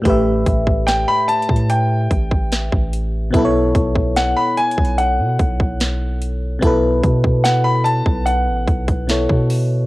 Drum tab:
HH |x-----x-----x-----x-x-x-x-----x-----x-----x-----|x-----x-----x-----x-x-x-x-----x-----x-----x-----|x-----x-----x-----x-----x-----x--x--x-----o-----|
SD |------------o-----------------------o-----------|------------o-----------------------o-----------|------------o-----------------------o-----------|
BD |o-----o--o-----------o--------o--o-----o--------|o-----o--o-----------o--------o--o--------------|o-----o--o-----------o--------o--o-----o--------|